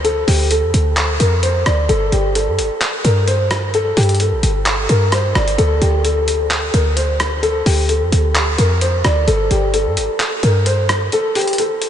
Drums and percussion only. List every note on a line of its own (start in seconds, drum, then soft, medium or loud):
0.05 closed hi-hat medium
0.28 open hi-hat medium
0.51 closed hi-hat medium
0.74 closed hi-hat medium
0.97 clap loud
0.97 closed hi-hat medium
1.20 closed hi-hat medium
1.43 closed hi-hat medium
1.66 cross-stick medium
1.66 closed hi-hat medium
1.89 closed hi-hat medium
2.12 closed hi-hat medium
2.35 closed hi-hat medium
2.59 closed hi-hat medium
2.81 clap loud
2.81 closed hi-hat medium
3.05 closed hi-hat medium
3.28 closed hi-hat medium
3.51 cross-stick medium
3.51 closed hi-hat medium
3.74 closed hi-hat medium
3.97 closed hi-hat soft
3.97 open hi-hat medium
4.03 closed hi-hat medium
4.09 closed hi-hat medium
4.15 closed hi-hat medium
4.20 closed hi-hat medium
4.43 closed hi-hat medium
4.66 clap loud
4.66 closed hi-hat medium
4.89 closed hi-hat medium
5.12 cross-stick medium
5.12 closed hi-hat medium
5.35 cross-stick medium
5.35 closed hi-hat soft
5.48 closed hi-hat medium
5.58 closed hi-hat medium
5.82 closed hi-hat medium
6.05 closed hi-hat medium
6.28 closed hi-hat medium
6.51 clap loud
6.51 closed hi-hat medium
6.74 closed hi-hat medium
6.97 closed hi-hat medium
7.20 cross-stick medium
7.20 closed hi-hat medium
7.43 closed hi-hat medium
7.66 open hi-hat medium
7.89 closed hi-hat medium
8.12 closed hi-hat medium
8.35 clap loud
8.35 closed hi-hat medium
8.58 closed hi-hat medium
8.81 closed hi-hat medium
9.04 cross-stick medium
9.04 closed hi-hat medium
9.28 closed hi-hat medium
9.51 closed hi-hat medium
9.74 closed hi-hat medium
9.97 closed hi-hat medium
10.20 clap loud
10.20 closed hi-hat medium
10.43 closed hi-hat medium
10.66 closed hi-hat medium
10.89 cross-stick medium
10.89 closed hi-hat medium
11.12 closed hi-hat medium
11.35 closed hi-hat soft
11.35 open hi-hat medium
11.41 closed hi-hat medium
11.48 closed hi-hat medium
11.53 closed hi-hat medium
11.58 closed hi-hat medium
11.82 closed hi-hat medium